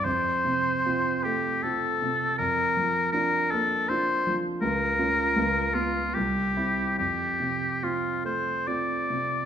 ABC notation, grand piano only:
X:1
M:3/4
L:1/8
Q:1/4=76
K:F
V:1 name="Grand piano"
F,, C, [CF] A, [CF] C, | F,, F, [DF] B, [DF] F, | _D,, [_DF] D,, [_CF] =C,, [=CE] | F,, C, [CF] A, [CF] C, |]